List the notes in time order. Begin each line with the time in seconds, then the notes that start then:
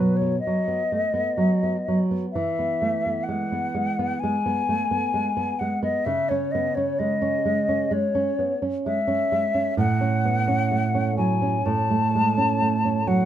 Already playing: B2 F#3 B3 B4
0.17 C#5
0.21 B3
0.40 D#5
0.47 F#3
0.68 B3
0.92 A3
1.14 B3
1.37 F#3
1.63 B3
1.88 F#3
2.11 B3
2.32 E3 E5
2.59 B3
2.82 A3
3.06 B3
3.23 F#5
3.29 G#3
3.52 B3
3.74 G#3
3.99 B3
4.19 G#3 G#5
4.46 B3
4.69 A3
4.91 B3
5.14 G#3
5.37 B3
5.59 G#3 F#5
5.83 B3 D#5
6.05 C#3 E5
6.29 C#4 C#5
6.51 B3 D#5
6.75 C#4 C#5
6.99 G#3 D#5
7.22 C#4
7.45 G#3
7.69 C#4
7.91 G#3 C#5
8.15 C#4
8.39 B3
8.62 C#4
8.86 G#3 E5
9.07 C#4
9.32 G#3
9.54 C#4
9.77 A2 F#5
10.01 C#4
10.25 B3
10.48 C#4
10.71 A3
10.95 C#4
11.18 F#3 G#5
11.42 C#4
11.66 A2 A5
11.90 A3
12.15 G#3
12.38 C#4
12.61 A3
12.85 C#4
13.07 F#3 F#5